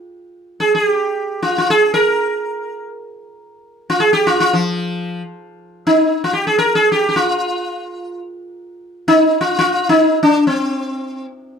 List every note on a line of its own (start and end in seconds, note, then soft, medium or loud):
0.60 0.74 G#4 medium
0.75 0.87 G#4 medium
0.87 1.44 G4 medium
1.42 1.57 F4 medium
1.58 1.68 F4 medium
1.70 1.93 G#4 medium
1.94 2.89 A#4 medium
3.90 4.00 F4 medium
4.00 4.13 G#4 medium
4.13 4.27 G4 medium
4.27 4.39 F4 medium
4.40 4.54 F4 medium
4.53 5.21 F3 medium
5.87 6.23 D#4 medium
6.24 6.32 F4 medium
6.33 6.46 G4 medium
6.47 6.57 G#4 medium
6.58 6.74 A#4 medium
6.75 6.89 G#4 medium
6.92 7.07 G4 medium
7.09 7.15 G4 medium
7.16 8.21 F4 medium
9.08 9.40 D#4 medium
9.41 9.57 F4 medium
9.59 9.89 F4 medium
9.89 10.19 D#4 medium
10.23 10.47 D4 medium
10.47 11.26 C4 medium